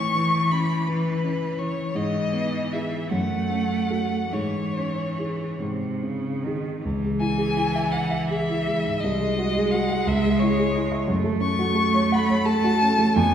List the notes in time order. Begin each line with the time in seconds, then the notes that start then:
Already playing: A2 E3 C#6
0.15 E3
0.51 C#4 B5
0.87 E3 B4
1.24 C#4
1.58 E3 C#5
1.95 G#2 E3 D#5
2.33 B3
2.72 E4 G#4 E5
3.10 F#2 A3 F#5
3.50 C#4
3.90 F#4 A4
4.32 G#2 E3 C#5
4.77 C#4
5.18 E4 G#4
5.60 G#2 C3
6.02 C#3 C4
6.44 D#3 D#4 G#4
6.84 C#2 E3
7.04 G#3
7.20 E4 G#5
7.38 G#4
7.57 E4
7.76 E5
7.91 F#5 G#5
8.11 E5
8.27 G#4 E5
8.49 E4
8.67 G#3
8.86 G#2
9.00 G#3 D#5
9.04 C2
9.20 G#3
9.38 F#4
9.57 G#4
9.71 F#4 F#5
9.90 F#5
10.07 C#2 E5
10.25 G#3
10.39 E4 C#5
10.59 G#4
10.75 E4
10.92 E5
11.08 F#2 A3
11.24 A3
11.41 C#4 C#6
11.59 F#4
11.75 A4
11.94 C#5
12.12 F#5 B5
12.30 C#5
12.46 A4 A5
12.64 F#4
12.82 C#4
12.99 A3
13.16 F2 B3 G#5